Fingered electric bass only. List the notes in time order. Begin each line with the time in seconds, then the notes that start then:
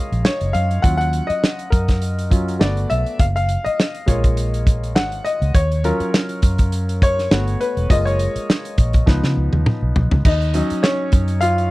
0.12 A#1
0.41 F#1
0.55 F#2
0.84 D#2
1.30 muted fingered electric bass stroke
1.73 F#2
2.61 G1
2.91 B1
3.20 F#1
3.66 muted fingered electric bass stroke
4.08 A#1
4.96 G#1
5.42 C#2
5.55 D#2
6.00 muted fingered electric bass stroke
6.43 F#2
7.31 G1
7.77 E1
7.90 F#1
8.36 muted fingered electric bass stroke
8.78 A#1
9.07 C#2
9.24 C#3
9.37 C#2
9.53 D#2
9.82 B1
9.97 B1
10.12 C#2
10.26 D#2
10.71 muted fingered electric bass stroke
11.13 F#2